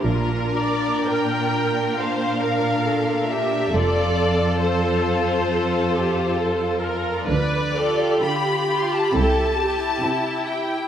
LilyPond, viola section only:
\new Staff \with { instrumentName = "Viola section" } { \time 4/4 \key f \major \tempo 4 = 67 f'8 d''8 bes'4 c''8 bes'8 a'8 g'8 | a'2 a'8 g'8 a'8 bes'8 | b'8 a'8 g'4 a'8 g'8 e'4 | }